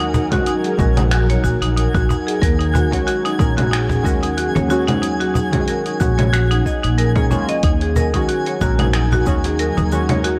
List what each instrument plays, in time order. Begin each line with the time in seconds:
Already playing: upright bass D#2, synth stab D#3 G#3 C#4 F#4, ambient pad F#3 D#4 A#4 F#5, synth texture G#5
0.00 marimba D#4
0.14 marimba D#4, cajon bass, cabasa
0.30 upright bass C#2, synth stab D#3 G#3 C#4 F#4, marimba F#4, kick, open hi-hat, low conga, cabasa
0.46 marimba D#4, open hi-hat, cabasa
0.64 marimba G#4, open hi-hat, cabasa
0.77 upright bass A#1, synth stab D#3 G#3 C#4 F#4, marimba A#4, cajon bass, kick, cajon slap, cabasa
0.97 marimba D#4, open hi-hat, low conga, cabasa
1.11 marimba F#4, finger snap, open hi-hat, cabasa
1.30 marimba C#5, open hi-hat, cabasa
1.44 upright bass A#1, marimba F#4, kick, cabasa
1.62 upright bass A#1, marimba D#4, open hi-hat, cabasa
1.77 marimba D#4, open hi-hat, cabasa
1.94 upright bass A#1, marimba F#4, kick, cajon slap, cabasa
2.09 marimba D#4, cajon bass, cabasa
2.27 marimba G#4, open hi-hat, cabasa
2.42 upright bass D#2, marimba A#4, kick, open hi-hat, cabasa
2.59 ambient pad C#4, marimba D#4, open hi-hat
2.74 marimba F#4, ambient pad G#4, cajon bass, cabasa
2.91 upright bass C#2, synth stab D#3 G#3 C#4 F#4, marimba C#5, kick, cajon slap, open hi-hat, cabasa
3.07 marimba F#4, open hi-hat, cabasa
3.25 marimba D#4, open hi-hat, cabasa
3.38 upright bass A#1, synth stab D#3 G#3 C#4 A#4, marimba D#4, kick, cajon bass, cajon slap, cabasa
3.57 marimba F#4, open hi-hat, low conga, cabasa
3.71 marimba D#4, finger snap, open hi-hat, cabasa
3.89 marimba G#4, cajon bass, cabasa
4.03 upright bass D#2, synth stab D#3 G#3 C#4 F#4, marimba A#4, kick, cabasa
4.23 marimba D#4, cajon slap, open hi-hat, cabasa
4.37 marimba F#4, open hi-hat, cabasa
4.55 upright bass D#2, marimba C#5, cajon slap, cabasa
4.68 synth stab D#3 G#3 C#4, marimba F#4, cabasa
4.72 synth stab F#4
4.87 marimba D#4, open hi-hat, low conga, cabasa
5.02 marimba D#4, open hi-hat, cabasa
5.20 marimba F#4, open hi-hat
5.34 marimba D#4, cajon bass, cabasa
5.52 upright bass C#2, synth stab D#3 G#3 C#4 F#4, marimba G#4, kick, open hi-hat, low conga, cabasa
5.68 marimba A#4, open hi-hat, cabasa
5.86 marimba D#4, open hi-hat, cabasa
6.00 upright bass A#1, synth stab D#3 G#3 C#4 F#4, marimba F#4, kick, cajon bass, cajon slap, cabasa
6.18 marimba C#5, open hi-hat, low conga, cabasa
6.33 marimba F#4, finger snap, open hi-hat, cabasa
6.51 marimba D#4, open hi-hat, cabasa
6.66 marimba D#5, kick, cabasa
6.84 upright bass A#1, marimba D#4, open hi-hat, cabasa
6.98 marimba A#4, open hi-hat, cabasa
7.15 synth stab D#3 G#3 C#4 G#4, marimba A#3, kick, cajon slap, cabasa
7.30 upright bass C#2, synth stab D#3 G#3 C#4 F4, marimba C#4, cajon bass, cabasa
7.49 marimba D#5, open hi-hat, cabasa
7.63 upright bass D#2, ambient pad F#3, marimba D#4, kick, open hi-hat, cabasa
7.81 marimba G#4, open hi-hat
7.93 ambient pad D#4, marimba A#4, cajon bass, cabasa
8.10 synth stab D#3, ambient pad A#4
8.14 upright bass C#2, synth stab G#3 C#4 F#4, marimba D#4, kick, cajon slap, open hi-hat, cabasa
8.28 marimba F#4, open hi-hat, cabasa
8.46 marimba C#5, open hi-hat, cabasa
8.61 upright bass A#1, synth stab D#3 G#3 C#4 A#4, marimba F#4, cajon bass, kick, cajon slap, cabasa
8.79 marimba D#4, open hi-hat, low conga, cabasa
8.93 marimba D#4, finger snap, open hi-hat, cabasa
9.12 marimba F#4, cajon bass, cabasa
9.25 upright bass D#2, synth stab D#3 G#3 C#4 F#4, marimba D#4, kick, cabasa
9.44 marimba G#4, cajon slap, open hi-hat, cabasa
9.59 marimba A#4, open hi-hat, cabasa
9.77 upright bass D#2, marimba D#4, cajon slap, cabasa
9.90 synth stab D#3 G#3 C#4, marimba F#4, cabasa
9.95 synth stab F#4
10.09 marimba C#5, open hi-hat, low conga, cabasa
10.24 marimba F#4, open hi-hat, cabasa